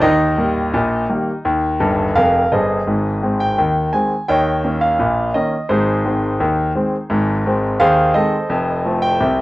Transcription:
0.01 D#2 D#3 D#4 D#5
0.37 D#3 G3 A#3
0.74 A#1 A#2
1.09 D#3 G3 A#3
1.45 D#2 D#3
1.80 G1 G2
2.15 F1 F2 A#4 F5
2.52 G1 G2 G#4 C5 D#5
2.87 G#1 G#2
3.23 D#3 G#3 C4
3.40 G5
3.58 D#2 D#3
3.93 D#3 G#3 C4 G#5
4.28 D#2 D#3 C#5 D#5 G5
4.64 D#3 A#3 C#4
4.81 F5
4.99 A#1 A#2
5.34 D#3 A#3 C#4 D#5
5.69 G#1 G#2 D#4 G#4 C5
6.05 D#3 G#3 C4
6.40 D#2 D#3
6.75 D#3 G#3 C4
7.10 G#1 G#2
7.46 D#3 G#3 C4
7.80 D#2 D#3 G#4 C5 F5
8.14 D#3 G#3 C4 A4 C5 D#5
8.49 F1 F2
8.85 F3 A3 C4
9.02 G5
9.20 C2 C3

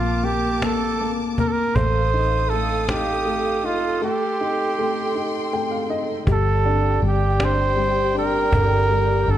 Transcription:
Already playing: A#1 A#3 F4 A5 D6
0.23 A#3 G4
0.62 A#3 A4, cajon slap
1.00 A#3, cajon slap
1.38 A#3 A#4, cajon bass
1.48 A4
1.52 A#4
1.75 A1 A3 A4 C5 F5 D#6, cajon bass
2.14 D#4
2.49 A3 A4
2.89 D#4 G4, cajon slap
3.26 A3, cajon slap
3.64 D#4 F4, cajon slap
4.02 A3 G4 G5 C6
4.41 D#4
4.79 A3
5.15 D#4
5.53 A3 G5
5.71 F5
5.90 D#4 D#5
6.26 G1 G3 G4 D5 G5, cajon bass
6.33 A4
6.65 D4
7.02 G1 G3, cajon slap
7.08 G4
7.40 D4, cajon slap
7.44 C5
7.76 G3
8.14 D4, cajon slap
8.19 A#4
8.52 G1 D3, cajon bass
8.90 G3
9.28 G1 D4 A4

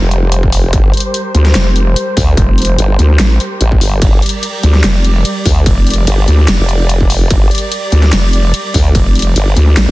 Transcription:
Already playing: G3 G4 A#4 C5
0.02 F1
0.11 closed hi-hat
0.32 closed hi-hat
0.43 kick
0.52 open hi-hat
0.73 G1, kick, closed hi-hat
0.94 closed hi-hat
0.97 closed hi-hat
1.00 closed hi-hat
1.14 closed hi-hat
1.35 D2, closed hi-hat
1.46 snare
1.55 F1, snare, closed hi-hat
1.76 closed hi-hat
1.96 closed hi-hat
2.17 D2, kick, open hi-hat
2.37 F1, kick, closed hi-hat
2.58 closed hi-hat
2.62 closed hi-hat
2.65 closed hi-hat
2.78 G1, closed hi-hat
2.99 D2, closed hi-hat
3.20 A1, snare, closed hi-hat
3.40 closed hi-hat
3.61 A1, closed hi-hat
3.72 kick
3.81 G1, open hi-hat
4.02 G1 D5, kick, closed hi-hat, ride
4.22 closed hi-hat
4.26 closed hi-hat
4.29 closed hi-hat
4.43 closed hi-hat, ride
4.63 D2, closed hi-hat
4.75 snare
4.84 F1, snare, closed hi-hat, ride
5.04 closed hi-hat
5.25 closed hi-hat, ride
5.46 D2, kick, open hi-hat
5.66 F1, kick, closed hi-hat, ride
5.87 closed hi-hat
5.90 closed hi-hat
5.94 closed hi-hat
6.07 G1, closed hi-hat, ride
6.28 D2, closed hi-hat
6.48 F1, snare, closed hi-hat, ride
6.60 F1
6.69 closed hi-hat
6.89 closed hi-hat, ride
7.01 kick
7.10 open hi-hat
7.31 G1, kick, closed hi-hat, ride
7.51 closed hi-hat
7.55 closed hi-hat
7.58 closed hi-hat
7.72 closed hi-hat, ride
7.92 D2, closed hi-hat
8.03 snare
8.13 F1, snare, closed hi-hat, ride
8.33 closed hi-hat
8.54 closed hi-hat, ride
8.74 D2, kick, open hi-hat
8.95 F1, kick, closed hi-hat, ride
9.15 closed hi-hat
9.19 closed hi-hat
9.22 closed hi-hat
9.36 G1, closed hi-hat, ride
9.57 D2, closed hi-hat
9.77 A1, snare, closed hi-hat, ride

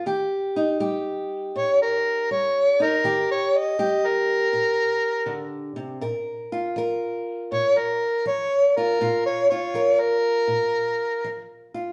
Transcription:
0.06 D#3 G4
0.56 D#4
0.80 G3 G4
1.55 A#2 C#5
1.82 A#4
2.31 G3 C#5
2.80 D#4 A#4
3.04 D#3 G4
3.31 C#5
3.57 D#5
3.79 G3 G4
4.07 A#4
4.53 A#2
5.26 D3
5.76 C3
6.01 A#2 A#4
6.52 F4
6.76 F3 A#4
7.52 A#2 C#5
7.78 A#4
8.26 F3 C#5
8.76 F4 A#4
9.01 A#2 F4
9.26 C#5
9.50 F4 C#5
9.74 F3 A#4
10.00 A#4
10.47 A#2
11.24 F3
11.74 F4

